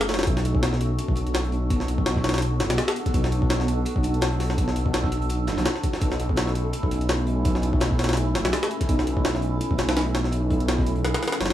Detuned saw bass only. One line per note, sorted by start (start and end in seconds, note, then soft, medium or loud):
0.00 0.25 F#1 loud
0.27 0.97 B1 loud
1.08 1.69 B1 loud
1.70 2.62 B1 loud
2.60 2.69 F#1 loud
2.70 2.77 B1 medium
3.14 3.85 B1 loud
3.96 4.57 B1 loud
4.58 5.49 B1 medium
5.48 5.57 F#1 loud
5.58 5.65 B1 medium
6.02 6.72 B1 loud
6.83 7.44 B1 loud
7.45 8.37 B1 loud
8.35 8.44 F#1 medium
8.45 8.52 B1 medium
8.89 9.60 B1 medium
9.71 10.31 B1 loud
10.33 11.03 B1 medium
11.05 11.13 B1 medium
11.40 11.53 F#1 loud